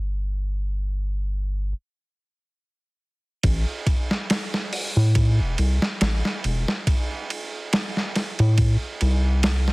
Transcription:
0.00 1.73 G1 medium
3.43 3.65 A1 loud
3.43 kick loud
3.43 ride medium
3.87 kick loud
3.87 ride medium
4.11 snare soft
4.30 snare loud
4.30 ride medium
4.54 snare soft
4.73 open hi-hat medium
4.97 5.41 A2 loud
5.15 kick loud
5.15 ride medium
5.40 5.56 E1 medium
5.58 5.79 C2 medium
5.58 ride medium
5.82 snare medium
6.01 6.22 A1 medium
6.01 snare loud
6.01 ride medium
6.25 snare soft
6.44 6.65 E1 medium
6.44 ride medium
6.68 snare medium
6.87 kick loud
6.87 ride medium
7.30 ride medium
7.73 snare loud
7.73 ride medium
7.97 snare soft
8.15 snare medium
8.15 ride medium
8.39 8.77 A2 loud
8.39 ride soft
8.58 kick loud
8.58 ride medium
9.01 9.70 C2 medium
9.01 ride medium
9.43 snare loud
9.43 ride medium
9.68 9.73 G1 medium
9.68 snare soft

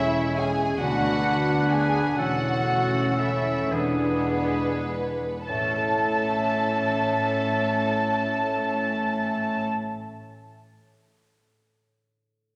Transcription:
0.00 0.78 E1 medium
0.00 0.78 E2 soft
0.00 0.84 E3 medium
0.00 0.77 G#3 medium
0.00 0.78 G#3 medium
0.00 0.36 C#4 soft
0.00 0.49 C#4 soft
0.00 0.52 C#4 soft
0.00 0.77 C#4 soft
0.00 0.78 C#4 medium
0.00 0.35 E4 medium
0.00 0.50 C#5 soft
0.00 0.35 E5 medium
0.00 0.38 E5 medium
0.36 0.83 C#4 soft
0.36 0.81 G#4 medium
0.36 0.84 C#5 soft
0.36 0.79 G#5 medium
0.36 0.81 G#5 medium
0.79 2.18 D2 medium
0.79 2.19 D2 soft
0.79 2.23 D3 soft
0.79 2.19 B3 medium
0.79 2.03 B3 soft
0.79 2.15 D4 soft
0.79 2.15 D4 medium
0.79 2.16 D4 soft
0.79 2.03 D4 soft
0.79 1.69 F#4 medium
0.79 2.14 B4 soft
0.79 1.70 F#5 medium
0.84 1.72 F#5 medium
1.25 1.70 D4 soft
1.69 2.22 D4 soft
1.69 2.19 G#4 medium
1.69 2.23 B4 soft
1.69 2.18 G#5 medium
1.69 2.19 G#5 medium
2.18 3.68 E1 medium
2.18 3.69 E2 soft
2.18 3.71 E3 soft
2.18 3.69 A3 soft
2.18 3.75 C#4 soft
2.18 3.74 C#4 soft
2.18 3.69 C#4 soft
2.18 3.17 F#4 medium
2.18 3.73 A4 soft
2.18 3.17 F#5 medium
2.18 3.19 F#5 medium
2.69 3.17 C#4 soft
3.18 3.76 C#4 soft
3.18 3.71 E4 medium
3.18 3.76 A4 soft
3.18 3.71 E5 soft
3.18 3.72 E5 medium
3.71 5.18 E1 soft
3.71 5.18 E2 soft
3.71 5.53 E3 soft
3.71 5.18 G#3 soft
3.71 5.05 G#3 soft
3.71 4.57 B3 soft
3.71 5.49 B3 soft
3.71 5.21 D4 soft
3.71 5.04 D4 soft
3.71 5.05 D4 soft
3.71 5.04 G#4 soft
3.71 5.49 B4 medium
3.71 5.21 B4 soft
4.28 4.87 D4 soft
4.88 5.53 D4 soft
4.88 5.53 G#4 soft
5.47 9.67 A1 soft
5.47 9.83 A2 soft
5.47 9.67 A2 soft
5.47 9.66 A3 soft
5.47 9.66 C#4 soft
5.47 9.67 C#4 soft
5.47 9.66 E4 soft
5.47 9.67 A4 medium
5.47 9.67 E5 soft
5.47 9.66 A5 soft
5.47 9.67 A5 soft
5.55 9.90 A3 soft
5.62 9.97 C#4 soft
5.69 10.04 E4 soft
5.76 10.11 A4 soft
5.83 10.18 E5 soft

